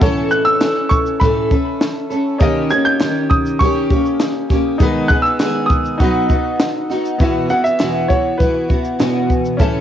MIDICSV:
0, 0, Header, 1, 5, 480
1, 0, Start_track
1, 0, Tempo, 598802
1, 12, Time_signature, 4, 2, 24, 8
1, 7860, End_track
2, 0, Start_track
2, 0, Title_t, "Upright piano"
2, 0, Program_c, 0, 0
2, 250, Note_on_c, 0, 90, 89
2, 290, Note_off_c, 0, 90, 0
2, 363, Note_on_c, 0, 88, 119
2, 701, Note_off_c, 0, 88, 0
2, 718, Note_on_c, 0, 85, 86
2, 773, Note_off_c, 0, 85, 0
2, 962, Note_on_c, 0, 83, 73
2, 1414, Note_off_c, 0, 83, 0
2, 2168, Note_on_c, 0, 92, 94
2, 2208, Note_off_c, 0, 92, 0
2, 2284, Note_on_c, 0, 91, 121
2, 2642, Note_on_c, 0, 87, 89
2, 2658, Note_off_c, 0, 91, 0
2, 2880, Note_on_c, 0, 85, 79
2, 2894, Note_off_c, 0, 87, 0
2, 3333, Note_off_c, 0, 85, 0
2, 4074, Note_on_c, 0, 90, 110
2, 4185, Note_on_c, 0, 88, 104
2, 4193, Note_off_c, 0, 90, 0
2, 4531, Note_off_c, 0, 88, 0
2, 4537, Note_on_c, 0, 87, 88
2, 5241, Note_off_c, 0, 87, 0
2, 6013, Note_on_c, 0, 78, 91
2, 6124, Note_on_c, 0, 76, 86
2, 6135, Note_off_c, 0, 78, 0
2, 6480, Note_on_c, 0, 73, 75
2, 6498, Note_off_c, 0, 76, 0
2, 6715, Note_on_c, 0, 71, 69
2, 6733, Note_off_c, 0, 73, 0
2, 7171, Note_off_c, 0, 71, 0
2, 7860, End_track
3, 0, Start_track
3, 0, Title_t, "Grand piano"
3, 0, Program_c, 1, 0
3, 0, Control_c, 1, 64, 127
3, 0, Note_on_c, 1, 64, 74
3, 9, Note_on_c, 1, 69, 68
3, 23, Control_c, 1, 64, 0
3, 23, Note_on_c, 1, 73, 91
3, 145, Control_c, 1, 64, 127
3, 1889, Note_off_c, 1, 64, 0
3, 1897, Note_off_c, 1, 69, 0
3, 1904, Note_off_c, 1, 73, 0
3, 1912, Note_on_c, 1, 61, 78
3, 1920, Note_on_c, 1, 63, 66
3, 1927, Note_on_c, 1, 67, 71
3, 1937, Note_on_c, 1, 70, 67
3, 1943, Control_c, 1, 64, 0
3, 1945, Note_on_c, 1, 75, 90
3, 2075, Control_c, 1, 64, 127
3, 3808, Note_off_c, 1, 61, 0
3, 3812, Note_off_c, 1, 63, 0
3, 3816, Note_off_c, 1, 67, 0
3, 3821, Note_off_c, 1, 70, 0
3, 3825, Note_off_c, 1, 75, 0
3, 3831, Note_on_c, 1, 63, 79
3, 3848, Note_on_c, 1, 68, 71
3, 3860, Control_c, 1, 64, 0
3, 3865, Note_on_c, 1, 71, 80
3, 3996, Control_c, 1, 64, 127
3, 4778, Note_off_c, 1, 63, 0
3, 4789, Note_off_c, 1, 68, 0
3, 4790, Note_on_c, 1, 63, 74
3, 4798, Note_off_c, 1, 71, 0
3, 4806, Note_on_c, 1, 66, 68
3, 4819, Control_c, 1, 64, 0
3, 4822, Note_on_c, 1, 71, 78
3, 4949, Control_c, 1, 64, 127
3, 5740, Note_off_c, 1, 63, 0
3, 5749, Note_off_c, 1, 66, 0
3, 5757, Note_off_c, 1, 71, 0
3, 5757, Note_on_c, 1, 59, 69
3, 5768, Note_on_c, 1, 64, 58
3, 5777, Note_on_c, 1, 66, 67
3, 5782, Control_c, 1, 64, 0
3, 5789, Note_on_c, 1, 76, 75
3, 5917, Control_c, 1, 64, 127
3, 7653, Note_off_c, 1, 59, 0
3, 7659, Note_off_c, 1, 64, 0
3, 7663, Note_off_c, 1, 66, 0
3, 7669, Note_off_c, 1, 76, 0
3, 7672, Note_on_c, 1, 61, 79
3, 7684, Note_on_c, 1, 64, 66
3, 7693, Note_on_c, 1, 69, 66
3, 7701, Control_c, 1, 64, 0
3, 7704, Note_on_c, 1, 76, 73
3, 7820, Control_c, 1, 64, 127
3, 7860, Note_off_c, 1, 61, 0
3, 7860, Note_off_c, 1, 64, 0
3, 7860, Note_off_c, 1, 69, 0
3, 7860, Note_off_c, 1, 76, 0
3, 7860, End_track
4, 0, Start_track
4, 0, Title_t, "Steel-string acoustic guitar"
4, 0, Program_c, 2, 25
4, 12, Note_on_c, 2, 45, 80
4, 16, Note_on_c, 2, 52, 90
4, 20, Note_on_c, 2, 57, 92
4, 23, Note_on_c, 2, 61, 111
4, 24, Note_on_c, 2, 69, 101
4, 476, Note_off_c, 2, 52, 0
4, 482, Note_off_c, 2, 57, 0
4, 485, Note_on_c, 2, 52, 66
4, 491, Note_on_c, 2, 57, 60
4, 492, Note_off_c, 2, 45, 0
4, 494, Note_off_c, 2, 69, 0
4, 495, Note_off_c, 2, 61, 0
4, 498, Note_on_c, 2, 61, 63
4, 504, Note_on_c, 2, 69, 64
4, 962, Note_off_c, 2, 52, 0
4, 966, Note_off_c, 2, 57, 0
4, 968, Note_on_c, 2, 45, 83
4, 969, Note_off_c, 2, 69, 0
4, 972, Note_on_c, 2, 52, 79
4, 975, Note_off_c, 2, 61, 0
4, 975, Note_on_c, 2, 57, 86
4, 978, Note_on_c, 2, 61, 88
4, 979, Note_on_c, 2, 69, 88
4, 1194, Note_off_c, 2, 69, 0
4, 1204, Note_on_c, 2, 69, 51
4, 1206, Note_off_c, 2, 61, 0
4, 1210, Note_off_c, 2, 45, 0
4, 1211, Note_off_c, 2, 52, 0
4, 1213, Note_off_c, 2, 57, 0
4, 1216, Note_on_c, 2, 61, 49
4, 1223, Note_on_c, 2, 57, 48
4, 1676, Note_off_c, 2, 69, 0
4, 1685, Note_on_c, 2, 69, 67
4, 1694, Note_off_c, 2, 61, 0
4, 1697, Note_off_c, 2, 57, 0
4, 1697, Note_on_c, 2, 61, 55
4, 1707, Note_on_c, 2, 57, 50
4, 1923, Note_off_c, 2, 61, 0
4, 1924, Note_on_c, 2, 51, 107
4, 1927, Note_off_c, 2, 57, 0
4, 1928, Note_off_c, 2, 69, 0
4, 1930, Note_on_c, 2, 58, 92
4, 1933, Note_on_c, 2, 61, 102
4, 1937, Note_on_c, 2, 67, 110
4, 2156, Note_off_c, 2, 67, 0
4, 2165, Note_on_c, 2, 67, 55
4, 2166, Note_off_c, 2, 61, 0
4, 2167, Note_off_c, 2, 51, 0
4, 2170, Note_off_c, 2, 58, 0
4, 2175, Note_on_c, 2, 61, 54
4, 2182, Note_on_c, 2, 58, 47
4, 2403, Note_off_c, 2, 58, 0
4, 2408, Note_off_c, 2, 67, 0
4, 2408, Note_on_c, 2, 51, 63
4, 2409, Note_off_c, 2, 61, 0
4, 2412, Note_on_c, 2, 58, 64
4, 2419, Note_on_c, 2, 61, 64
4, 2426, Note_on_c, 2, 67, 60
4, 2886, Note_off_c, 2, 58, 0
4, 2887, Note_off_c, 2, 51, 0
4, 2890, Note_off_c, 2, 61, 0
4, 2890, Note_on_c, 2, 51, 74
4, 2894, Note_off_c, 2, 67, 0
4, 2896, Note_on_c, 2, 58, 88
4, 2899, Note_on_c, 2, 61, 88
4, 2903, Note_on_c, 2, 67, 102
4, 3123, Note_off_c, 2, 67, 0
4, 3129, Note_off_c, 2, 61, 0
4, 3130, Note_off_c, 2, 51, 0
4, 3132, Note_on_c, 2, 67, 55
4, 3133, Note_off_c, 2, 58, 0
4, 3139, Note_on_c, 2, 61, 55
4, 3149, Note_on_c, 2, 58, 47
4, 3600, Note_off_c, 2, 67, 0
4, 3609, Note_off_c, 2, 61, 0
4, 3609, Note_on_c, 2, 67, 59
4, 3616, Note_off_c, 2, 58, 0
4, 3619, Note_on_c, 2, 61, 52
4, 3626, Note_on_c, 2, 58, 57
4, 3849, Note_off_c, 2, 67, 0
4, 3850, Note_off_c, 2, 58, 0
4, 3850, Note_on_c, 2, 51, 93
4, 3853, Note_on_c, 2, 56, 98
4, 3854, Note_off_c, 2, 61, 0
4, 3857, Note_on_c, 2, 59, 91
4, 3860, Note_on_c, 2, 68, 97
4, 4074, Note_off_c, 2, 68, 0
4, 4084, Note_off_c, 2, 59, 0
4, 4084, Note_on_c, 2, 68, 59
4, 4090, Note_off_c, 2, 51, 0
4, 4091, Note_off_c, 2, 56, 0
4, 4094, Note_on_c, 2, 59, 44
4, 4101, Note_on_c, 2, 56, 47
4, 4322, Note_off_c, 2, 56, 0
4, 4325, Note_on_c, 2, 51, 61
4, 4326, Note_off_c, 2, 68, 0
4, 4328, Note_off_c, 2, 59, 0
4, 4332, Note_on_c, 2, 56, 61
4, 4338, Note_on_c, 2, 59, 67
4, 4342, Note_on_c, 2, 68, 76
4, 4806, Note_off_c, 2, 51, 0
4, 4806, Note_on_c, 2, 47, 75
4, 4810, Note_off_c, 2, 56, 0
4, 4810, Note_on_c, 2, 54, 76
4, 4813, Note_off_c, 2, 59, 0
4, 4813, Note_on_c, 2, 59, 87
4, 4816, Note_off_c, 2, 68, 0
4, 4817, Note_on_c, 2, 63, 94
4, 4819, Note_on_c, 2, 66, 88
4, 5036, Note_off_c, 2, 66, 0
4, 5046, Note_on_c, 2, 66, 53
4, 5047, Note_off_c, 2, 63, 0
4, 5048, Note_off_c, 2, 47, 0
4, 5050, Note_off_c, 2, 54, 0
4, 5051, Note_off_c, 2, 59, 0
4, 5057, Note_on_c, 2, 63, 46
4, 5063, Note_on_c, 2, 59, 46
4, 5524, Note_off_c, 2, 66, 0
4, 5527, Note_on_c, 2, 66, 55
4, 5529, Note_off_c, 2, 63, 0
4, 5539, Note_on_c, 2, 63, 56
4, 5542, Note_off_c, 2, 59, 0
4, 5545, Note_on_c, 2, 59, 48
4, 5768, Note_off_c, 2, 66, 0
4, 5770, Note_off_c, 2, 59, 0
4, 5771, Note_on_c, 2, 40, 82
4, 5772, Note_on_c, 2, 47, 84
4, 5774, Note_off_c, 2, 63, 0
4, 5775, Note_on_c, 2, 52, 83
4, 5780, Note_on_c, 2, 59, 86
4, 5783, Note_on_c, 2, 64, 90
4, 5783, Note_on_c, 2, 66, 89
4, 5997, Note_off_c, 2, 66, 0
4, 6002, Note_off_c, 2, 64, 0
4, 6007, Note_on_c, 2, 66, 57
4, 6008, Note_off_c, 2, 59, 0
4, 6010, Note_off_c, 2, 40, 0
4, 6011, Note_off_c, 2, 47, 0
4, 6012, Note_off_c, 2, 52, 0
4, 6012, Note_on_c, 2, 64, 55
4, 6017, Note_on_c, 2, 59, 47
4, 6025, Note_on_c, 2, 52, 39
4, 6248, Note_off_c, 2, 52, 0
4, 6248, Note_off_c, 2, 66, 0
4, 6249, Note_off_c, 2, 59, 0
4, 6251, Note_off_c, 2, 64, 0
4, 6252, Note_on_c, 2, 40, 72
4, 6254, Note_on_c, 2, 47, 81
4, 6257, Note_on_c, 2, 52, 75
4, 6258, Note_on_c, 2, 59, 77
4, 6261, Note_on_c, 2, 64, 83
4, 6264, Note_on_c, 2, 66, 79
4, 6479, Note_off_c, 2, 66, 0
4, 6485, Note_off_c, 2, 64, 0
4, 6489, Note_on_c, 2, 66, 53
4, 6491, Note_off_c, 2, 40, 0
4, 6491, Note_off_c, 2, 59, 0
4, 6492, Note_off_c, 2, 47, 0
4, 6494, Note_off_c, 2, 52, 0
4, 6495, Note_on_c, 2, 64, 58
4, 6501, Note_on_c, 2, 59, 50
4, 6507, Note_on_c, 2, 52, 49
4, 6717, Note_off_c, 2, 52, 0
4, 6724, Note_off_c, 2, 59, 0
4, 6727, Note_on_c, 2, 52, 56
4, 6729, Note_off_c, 2, 64, 0
4, 6730, Note_off_c, 2, 66, 0
4, 6734, Note_on_c, 2, 59, 54
4, 6738, Note_on_c, 2, 64, 63
4, 6747, Note_on_c, 2, 66, 64
4, 6954, Note_off_c, 2, 66, 0
4, 6963, Note_off_c, 2, 64, 0
4, 6964, Note_on_c, 2, 66, 53
4, 6968, Note_off_c, 2, 59, 0
4, 6969, Note_off_c, 2, 52, 0
4, 6973, Note_on_c, 2, 64, 44
4, 6977, Note_on_c, 2, 59, 47
4, 6983, Note_on_c, 2, 52, 39
4, 7203, Note_off_c, 2, 52, 0
4, 7204, Note_on_c, 2, 40, 85
4, 7205, Note_off_c, 2, 59, 0
4, 7208, Note_off_c, 2, 64, 0
4, 7208, Note_off_c, 2, 66, 0
4, 7209, Note_on_c, 2, 47, 82
4, 7213, Note_on_c, 2, 52, 81
4, 7214, Note_on_c, 2, 59, 88
4, 7217, Note_on_c, 2, 64, 80
4, 7218, Note_on_c, 2, 66, 82
4, 7685, Note_off_c, 2, 47, 0
4, 7688, Note_off_c, 2, 40, 0
4, 7688, Note_off_c, 2, 52, 0
4, 7689, Note_on_c, 2, 45, 90
4, 7691, Note_off_c, 2, 59, 0
4, 7691, Note_on_c, 2, 52, 91
4, 7694, Note_off_c, 2, 64, 0
4, 7694, Note_on_c, 2, 57, 93
4, 7695, Note_off_c, 2, 66, 0
4, 7697, Note_on_c, 2, 61, 94
4, 7702, Note_on_c, 2, 69, 105
4, 7860, Note_off_c, 2, 45, 0
4, 7860, Note_off_c, 2, 52, 0
4, 7860, Note_off_c, 2, 57, 0
4, 7860, Note_off_c, 2, 61, 0
4, 7860, Note_off_c, 2, 69, 0
4, 7860, End_track
5, 0, Start_track
5, 0, Title_t, "Drums"
5, 14, Note_on_c, 9, 36, 127
5, 14, Note_on_c, 9, 82, 92
5, 94, Note_off_c, 9, 36, 0
5, 94, Note_off_c, 9, 82, 0
5, 249, Note_on_c, 9, 82, 60
5, 330, Note_off_c, 9, 82, 0
5, 374, Note_on_c, 9, 82, 54
5, 454, Note_off_c, 9, 82, 0
5, 491, Note_on_c, 9, 38, 114
5, 493, Note_on_c, 9, 82, 73
5, 495, Note_on_c, 9, 39, 84
5, 571, Note_off_c, 9, 38, 0
5, 573, Note_off_c, 9, 82, 0
5, 575, Note_off_c, 9, 39, 0
5, 731, Note_on_c, 9, 82, 61
5, 732, Note_on_c, 9, 36, 102
5, 811, Note_off_c, 9, 82, 0
5, 812, Note_off_c, 9, 36, 0
5, 851, Note_on_c, 9, 82, 45
5, 931, Note_off_c, 9, 82, 0
5, 974, Note_on_c, 9, 36, 100
5, 977, Note_on_c, 9, 82, 58
5, 1054, Note_off_c, 9, 36, 0
5, 1057, Note_off_c, 9, 82, 0
5, 1212, Note_on_c, 9, 36, 85
5, 1213, Note_on_c, 9, 82, 48
5, 1292, Note_off_c, 9, 36, 0
5, 1294, Note_off_c, 9, 82, 0
5, 1452, Note_on_c, 9, 38, 109
5, 1457, Note_on_c, 9, 82, 91
5, 1458, Note_on_c, 9, 39, 89
5, 1532, Note_off_c, 9, 38, 0
5, 1537, Note_off_c, 9, 82, 0
5, 1538, Note_off_c, 9, 39, 0
5, 1694, Note_on_c, 9, 82, 51
5, 1774, Note_off_c, 9, 82, 0
5, 1929, Note_on_c, 9, 82, 91
5, 1930, Note_on_c, 9, 36, 125
5, 2009, Note_off_c, 9, 82, 0
5, 2010, Note_off_c, 9, 36, 0
5, 2164, Note_on_c, 9, 82, 61
5, 2245, Note_off_c, 9, 82, 0
5, 2407, Note_on_c, 9, 39, 81
5, 2409, Note_on_c, 9, 38, 101
5, 2411, Note_on_c, 9, 82, 77
5, 2487, Note_off_c, 9, 39, 0
5, 2489, Note_off_c, 9, 38, 0
5, 2491, Note_off_c, 9, 82, 0
5, 2650, Note_on_c, 9, 82, 59
5, 2651, Note_on_c, 9, 36, 110
5, 2730, Note_off_c, 9, 82, 0
5, 2731, Note_off_c, 9, 36, 0
5, 2771, Note_on_c, 9, 82, 48
5, 2851, Note_off_c, 9, 82, 0
5, 2891, Note_on_c, 9, 36, 92
5, 2892, Note_on_c, 9, 82, 63
5, 2971, Note_off_c, 9, 36, 0
5, 2973, Note_off_c, 9, 82, 0
5, 3128, Note_on_c, 9, 82, 48
5, 3129, Note_on_c, 9, 36, 81
5, 3208, Note_off_c, 9, 82, 0
5, 3209, Note_off_c, 9, 36, 0
5, 3249, Note_on_c, 9, 82, 53
5, 3329, Note_off_c, 9, 82, 0
5, 3366, Note_on_c, 9, 38, 107
5, 3371, Note_on_c, 9, 39, 88
5, 3372, Note_on_c, 9, 82, 83
5, 3446, Note_off_c, 9, 38, 0
5, 3451, Note_off_c, 9, 39, 0
5, 3452, Note_off_c, 9, 82, 0
5, 3609, Note_on_c, 9, 36, 84
5, 3609, Note_on_c, 9, 38, 36
5, 3610, Note_on_c, 9, 82, 47
5, 3689, Note_off_c, 9, 36, 0
5, 3689, Note_off_c, 9, 38, 0
5, 3690, Note_off_c, 9, 82, 0
5, 3848, Note_on_c, 9, 82, 100
5, 3849, Note_on_c, 9, 36, 127
5, 3928, Note_off_c, 9, 82, 0
5, 3929, Note_off_c, 9, 36, 0
5, 4083, Note_on_c, 9, 82, 52
5, 4090, Note_on_c, 9, 36, 98
5, 4164, Note_off_c, 9, 82, 0
5, 4170, Note_off_c, 9, 36, 0
5, 4211, Note_on_c, 9, 82, 56
5, 4291, Note_off_c, 9, 82, 0
5, 4326, Note_on_c, 9, 38, 101
5, 4328, Note_on_c, 9, 82, 72
5, 4329, Note_on_c, 9, 39, 83
5, 4406, Note_off_c, 9, 38, 0
5, 4409, Note_off_c, 9, 39, 0
5, 4409, Note_off_c, 9, 82, 0
5, 4566, Note_on_c, 9, 82, 61
5, 4569, Note_on_c, 9, 36, 90
5, 4646, Note_off_c, 9, 82, 0
5, 4649, Note_off_c, 9, 36, 0
5, 4688, Note_on_c, 9, 82, 49
5, 4768, Note_off_c, 9, 82, 0
5, 4810, Note_on_c, 9, 36, 99
5, 4810, Note_on_c, 9, 82, 61
5, 4890, Note_off_c, 9, 36, 0
5, 4890, Note_off_c, 9, 82, 0
5, 5046, Note_on_c, 9, 82, 49
5, 5049, Note_on_c, 9, 36, 86
5, 5126, Note_off_c, 9, 82, 0
5, 5129, Note_off_c, 9, 36, 0
5, 5288, Note_on_c, 9, 38, 123
5, 5293, Note_on_c, 9, 82, 77
5, 5294, Note_on_c, 9, 39, 92
5, 5368, Note_off_c, 9, 38, 0
5, 5373, Note_off_c, 9, 82, 0
5, 5374, Note_off_c, 9, 39, 0
5, 5532, Note_on_c, 9, 38, 32
5, 5533, Note_on_c, 9, 82, 50
5, 5612, Note_off_c, 9, 38, 0
5, 5614, Note_off_c, 9, 82, 0
5, 5653, Note_on_c, 9, 82, 59
5, 5733, Note_off_c, 9, 82, 0
5, 5770, Note_on_c, 9, 82, 85
5, 5772, Note_on_c, 9, 36, 116
5, 5850, Note_off_c, 9, 82, 0
5, 5852, Note_off_c, 9, 36, 0
5, 6009, Note_on_c, 9, 82, 54
5, 6089, Note_off_c, 9, 82, 0
5, 6135, Note_on_c, 9, 82, 51
5, 6215, Note_off_c, 9, 82, 0
5, 6249, Note_on_c, 9, 39, 74
5, 6252, Note_on_c, 9, 38, 108
5, 6254, Note_on_c, 9, 82, 71
5, 6330, Note_off_c, 9, 39, 0
5, 6332, Note_off_c, 9, 38, 0
5, 6334, Note_off_c, 9, 82, 0
5, 6493, Note_on_c, 9, 82, 52
5, 6494, Note_on_c, 9, 36, 86
5, 6573, Note_off_c, 9, 82, 0
5, 6574, Note_off_c, 9, 36, 0
5, 6736, Note_on_c, 9, 36, 88
5, 6739, Note_on_c, 9, 82, 57
5, 6816, Note_off_c, 9, 36, 0
5, 6819, Note_off_c, 9, 82, 0
5, 6974, Note_on_c, 9, 36, 85
5, 6974, Note_on_c, 9, 82, 44
5, 7054, Note_off_c, 9, 36, 0
5, 7054, Note_off_c, 9, 82, 0
5, 7090, Note_on_c, 9, 82, 51
5, 7171, Note_off_c, 9, 82, 0
5, 7215, Note_on_c, 9, 38, 104
5, 7217, Note_on_c, 9, 39, 74
5, 7220, Note_on_c, 9, 82, 81
5, 7295, Note_off_c, 9, 38, 0
5, 7297, Note_off_c, 9, 39, 0
5, 7300, Note_off_c, 9, 82, 0
5, 7454, Note_on_c, 9, 36, 74
5, 7459, Note_on_c, 9, 82, 40
5, 7535, Note_off_c, 9, 36, 0
5, 7540, Note_off_c, 9, 82, 0
5, 7576, Note_on_c, 9, 82, 57
5, 7656, Note_off_c, 9, 82, 0
5, 7693, Note_on_c, 9, 82, 81
5, 7695, Note_on_c, 9, 36, 113
5, 7774, Note_off_c, 9, 82, 0
5, 7775, Note_off_c, 9, 36, 0
5, 7860, End_track
0, 0, End_of_file